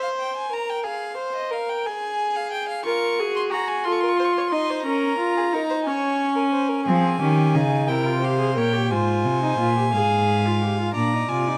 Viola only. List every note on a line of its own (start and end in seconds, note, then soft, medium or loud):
2.85 3.21 A#4 medium
3.20 3.53 G#4 loud
3.51 3.86 F#4 medium
3.85 4.54 F4 medium
4.52 4.85 D#4 medium
4.85 5.18 C#4 medium
5.18 5.54 F4 medium
5.53 5.88 D#4 medium
5.87 6.89 C#4 medium
6.87 7.20 C4 medium
7.21 7.57 C#4 medium
7.55 7.90 D#4 medium
7.89 8.07 E4 medium
8.06 8.24 F4 medium
8.22 8.38 G4 medium
8.39 8.55 G#4 medium
8.56 8.74 A#4 medium
8.73 8.93 G4 medium
8.91 9.42 F4 medium
9.42 9.59 D#4 medium
9.59 9.76 F4 medium
9.76 9.83 G4 medium
9.93 10.47 G#4 medium
10.45 10.64 F4 medium
10.62 10.78 G4 medium
10.79 10.94 F4 medium
10.95 11.14 D4 medium
11.13 11.28 D#4 medium
11.29 11.49 F4 medium
11.47 11.58 D#4 medium